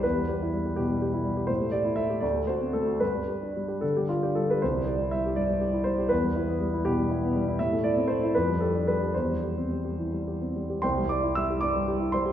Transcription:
X:1
M:6/8
L:1/16
Q:3/8=78
K:C
V:1 name="Grand piano"
B6 G6 | c2 d2 e2 d2 c2 A2 | B6 A G F G A B | c2 d2 e2 d4 c2 |
B6 G6 | e2 d2 c2 B2 A2 B2 | c8- c2 z2 | [cgc']2 [dd']2 [ee']2 [dd']4 [cc']2 |]
V:2 name="Grand piano"
E,, G, G E G, G B,, G, G E G, G | A,, A, G E A, G D,, A, ^F C A, F | G,, G, G D G, G D, G, G D G, G | C,, G, G E G, G G,, G, G E G, G |
E,, G, E B, G, E B,, G, E B, G, E | A,, A, E C A, E F,, G, G D G, G | E,, G, G C G, G E, G, G C G, G | C,, G, G E G, G G,, G, G E G, G |]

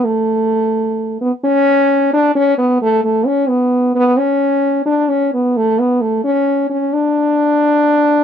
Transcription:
X:1
M:6/8
L:1/8
Q:3/8=87
K:Dlyd
V:1 name="French horn"
A,4- A, B, | C3 D C B, | A, A, C B,2 B, | C3 D C B, |
A, B, A, C2 C | D6 |]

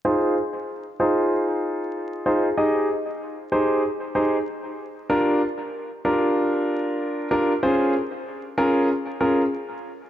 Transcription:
X:1
M:4/4
L:1/8
Q:"Swing 16ths" 1/4=95
K:Fm
V:1 name="Grand piano"
[EFAc] z2 [EFAc]4 [EFAc] | [EGAe] z2 [EGAc] z [EGAc] z2 | [=DFGB] z2 [DFGB]4 [DFGB] | [DFAc] z2 [DFAB] z [DFAB] z2 |]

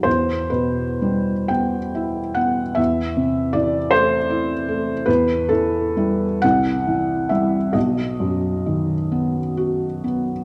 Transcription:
X:1
M:12/8
L:1/8
Q:3/8=45
K:Em
V:1 name="Felt piano"
c B2 g2 f e2 d c3 | B A2 f2 e ^d4- d z |]
V:2 name="Felt piano" clef=bass
E,, B,, G, B, E B, E,, C, E, A, E A, | E,, E, [G,E] C,, E, [G,E] B,,, F,, ^D, B, F B, |]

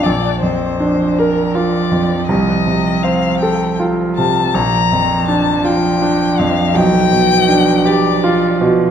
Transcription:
X:1
M:6/8
L:1/8
Q:3/8=54
K:Bb
V:1 name="Violin"
d c2 B d2 | e2 f g z a | b2 a g2 f | g3 d2 z |]
V:2 name="Grand piano" clef=bass
B,,, F,, D B F F,, | C,, C, C A F C, | B,,, F,, D F D F,, | =B,,, =B,, D G F B,, |]
V:3 name="Cello" clef=bass
F,6- | F,6 | F,6- | F,6 |]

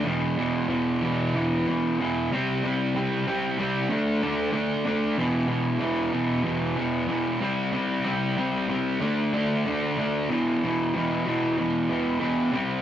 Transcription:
X:1
M:4/4
L:1/8
Q:1/4=94
K:Em
V:1 name="Distorted electric guitar" clef=bass
[E,,B,,E,] [E,,B,,E,] [E,,B,,E,] [E,,B,,E,] [E,,B,,E,] [E,,B,,E,] [E,,B,,E,] [C,G,C] | [C,G,C] [C,G,C] [C,G,C] [C,G,C] [D,A,D] [D,A,D] [D,A,D] [D,A,D] | [E,,B,,E,] [E,,B,,E,] [E,,B,,E,] [E,,B,,E,] [E,,B,,E,] [E,,B,,E,] [E,,B,,E,] [C,G,C] | [C,G,C] [C,G,C] [C,G,C] [C,G,C] [D,A,D] [D,A,D] [D,A,D] [D,A,D] |
[E,,B,,E,] [E,,B,,E,] [E,,B,,E,] [E,,B,,E,] [E,,B,,E,] [E,,B,,E,] [E,,B,,E,] [C,G,C] |]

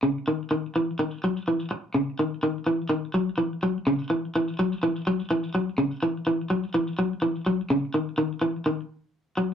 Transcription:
X:1
M:4/4
L:1/8
Q:"Swing 16ths" 1/4=126
K:C#m
V:1 name="Clean electric guitar" clef=bass
C, D, D, E, D, F, E, z | C, D, D, E, D, F, E, F, | C, E, E, F, E, F, E, F, | C, E, E, F, E, F, E, F, |
C, D, D, E, D, z2 F, |]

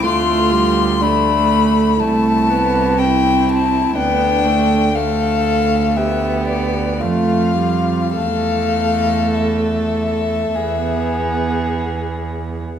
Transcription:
X:1
M:4/4
L:1/8
Q:1/4=59
K:Ddor
V:1 name="Violin"
c'2 b2 a2 g a | g2 f2 e d f2 | f2 e4 z2 |]
V:2 name="Violin"
F2 D2 E2 E2 | D2 A2 G2 F2 | A4 ^G4 |]
V:3 name="Viola"
A, G, A,2 A, B, C2 | B, A, A,2 B,2 A, G, | A,4 B,4 |]
V:4 name="Cello" clef=bass
D,,4 C,,4 | D,,6 F,,2 | E,,4 E,,4 |]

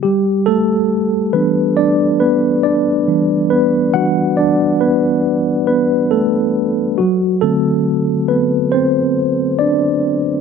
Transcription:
X:1
M:4/4
L:1/16
Q:"Swing 16ths" 1/4=69
K:Em
V:1 name="Tine electric piano"
[G,G]2 [A,A]4 [B,B]2 [Dd]2 [B,B]2 [Dd]3 z | [B,B]2 [Ff]2 [Dd]2 [B,B]4 [B,B]2 [A,A]3 z | [F,F]2 [A,A]4 [B,B]2 [Cc]4 [Dd]3 z |]
V:2 name="Tine electric piano" clef=bass
z6 [E,G,D]8 [E,G,D]2 | z2 [E,G,D]6 z8 | z2 [D,F,C]12- [D,F,C]2 |]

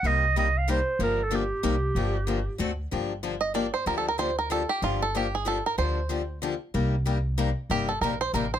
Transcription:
X:1
M:3/4
L:1/8
Q:"Swing" 1/4=188
K:Gm
V:1 name="Clarinet"
e2 e f c2 | B A G4- | G4 z2 | z6 |
z6 | z6 | z6 | z6 |
z6 |]
V:2 name="Five-string banjo"
z6 | z6 | z6 | z3 e d c |
(3B A B c B A G | F A G _A =A B | c4 z2 | z6 |
G A B c B c |]
V:3 name="Steel-string acoustic guitar"
[C,G,B,EG] z [C,G,B,EG] z [C,G,B,EG] z | [D,F,B,DG] z [D,F,B,DG] z [C,G,B,EG] z | [D,F,B,DG] z [D,F,B,DG] z [D,A,C^FA] z | [D,F,B,DG] z [D,F,B,DG] z [D,F,B,DG] z |
[D,F,B,DG] z [D,F,B,DG] z [D,F,B,DG] z | [D,F,B,DG] z [D,F,B,DG] z [D,F,B,DG] z | [D,F,B,DG] z [D,F,B,DG] z [D,F,B,DG] z | [C,G,B,EG] z [C,G,B,EG] z [C,G,B,EG] z |
[C,G,B,EG] z [C,G,B,EG] z [C,G,B,EG] z |]
V:4 name="Upright bass" clef=bass
C,,6 | G,,,4 C,,2 | G,,,4 D,,2 | G,,,6 |
D,,6 | G,,,6 | D,,6 | C,,6 |
G,,,2 B,,,2 A,,,2 |]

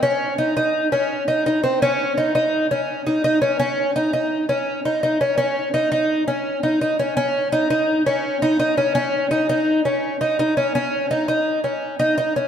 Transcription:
X:1
M:5/4
L:1/8
Q:1/4=168
K:Db
V:1 name="Twelve-string acoustic guitar"
D2 E E2 D2 E E C | D2 E E2 D2 E E D | D2 E E2 D2 E E D | D2 E E2 D2 E E D |
D2 E E2 D2 E E D | D2 E E2 D2 E E D | D2 E E2 D2 E E D |]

